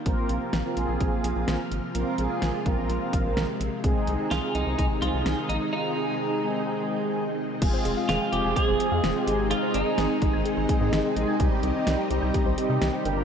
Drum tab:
CC |--------|--------|--------|--------|
HH |xxxxxxxx|xxxxxxxx|xxxxxxxx|--------|
SD |--o---o-|--o---o-|--o---o-|--------|
BD |o---o---|---o-o--|o---o---|--------|

CC |x-------|--------|--------|
HH |xxxxxxxx|xxxxxxxx|xxxxxxxx|
SD |--o---o-|--o---o-|--o---o-|
BD |o---o---|---o-o--|o---o---|